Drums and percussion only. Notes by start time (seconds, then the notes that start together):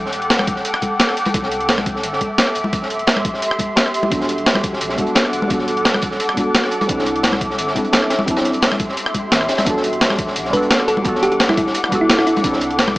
0.06 snare
0.12 closed hi-hat
0.22 closed hi-hat
0.30 snare, closed hi-hat
0.39 cross-stick, snare, high conga
0.47 kick, closed hi-hat
0.56 snare
0.65 closed hi-hat
0.74 cross-stick
0.82 kick, closed hi-hat, high conga
0.99 snare, closed hi-hat
1.08 cross-stick, snare
1.17 closed hi-hat
1.25 closed hi-hat, high conga
1.34 kick, closed hi-hat
1.43 snare
1.51 closed hi-hat
1.61 closed hi-hat
1.69 snare, closed hi-hat
1.77 cross-stick, snare, high conga
1.86 kick, closed hi-hat
1.96 snare
2.03 closed hi-hat
2.13 snare
2.21 kick, closed hi-hat, high conga
2.38 snare, closed hi-hat
2.47 cross-stick
2.55 closed hi-hat
2.64 high conga
2.73 kick, closed hi-hat
2.82 snare
2.90 closed hi-hat
2.99 closed hi-hat
3.07 snare, closed hi-hat
3.16 cross-stick, snare, high conga
3.25 kick, closed hi-hat
3.34 snare
3.42 closed hi-hat
3.51 cross-stick
3.59 kick, closed hi-hat, high conga
3.76 snare, closed hi-hat
3.86 cross-stick
3.94 closed hi-hat
4.03 high conga
4.12 kick, closed hi-hat
4.20 snare
4.29 closed hi-hat
4.38 closed hi-hat
4.46 snare, closed hi-hat
4.55 cross-stick, snare, high conga
4.63 kick, closed hi-hat
4.73 snare
4.81 closed hi-hat
4.89 snare
4.98 kick, closed hi-hat, high conga
5.07 closed hi-hat
5.15 snare, closed hi-hat
5.25 cross-stick
5.33 closed hi-hat
5.42 high conga
5.50 kick, closed hi-hat
5.59 snare
5.68 closed hi-hat
5.77 closed hi-hat
5.85 snare, closed hi-hat
5.94 cross-stick, snare, high conga
6.02 kick, closed hi-hat
6.11 snare
6.20 closed hi-hat
6.29 cross-stick
6.37 kick, closed hi-hat, high conga
6.54 snare, closed hi-hat
6.64 cross-stick, snare
6.71 closed hi-hat
6.81 closed hi-hat, high conga
6.89 kick, closed hi-hat
6.99 snare
7.06 closed hi-hat
7.16 closed hi-hat
7.23 snare, closed hi-hat
7.32 cross-stick, snare, high conga
7.41 kick, closed hi-hat
7.50 snare
7.58 closed hi-hat
7.67 snare
7.76 kick, closed hi-hat, high conga
7.84 closed hi-hat
7.93 snare, closed hi-hat
8.02 cross-stick
8.10 snare, closed hi-hat
8.19 high conga
8.27 kick, closed hi-hat
8.37 snare, closed hi-hat
8.45 snare, closed hi-hat
8.53 closed hi-hat
8.62 snare, closed hi-hat
8.71 cross-stick, snare, high conga
8.79 kick, closed hi-hat
8.89 snare
8.97 closed hi-hat
9.06 cross-stick
9.14 kick, closed hi-hat, high conga
9.32 snare, closed hi-hat
9.41 cross-stick
9.48 snare, closed hi-hat
9.58 cross-stick, snare, closed hi-hat, high conga
9.66 kick, closed hi-hat
9.77 snare
9.84 closed hi-hat
9.93 closed hi-hat
10.01 snare, closed hi-hat
10.10 cross-stick, snare, high conga
10.19 kick, closed hi-hat
10.27 snare
10.36 closed hi-hat
10.45 snare
10.53 kick, closed hi-hat, high conga
10.63 closed hi-hat
10.70 snare, closed hi-hat
10.80 cross-stick
10.88 closed hi-hat
10.97 high conga
11.04 kick, closed hi-hat
11.15 snare
11.23 closed hi-hat
11.32 closed hi-hat
11.40 snare, closed hi-hat
11.49 cross-stick, snare, high conga
11.57 kick, closed hi-hat
11.67 snare
11.74 closed hi-hat
11.84 cross-stick
11.92 kick, closed hi-hat, high conga
12.10 snare, closed hi-hat
12.18 cross-stick, snare
12.27 closed hi-hat
12.37 closed hi-hat, high conga
12.44 kick, closed hi-hat
12.53 snare
12.61 closed hi-hat
12.71 closed hi-hat
12.78 snare, closed hi-hat
12.88 cross-stick, snare, high conga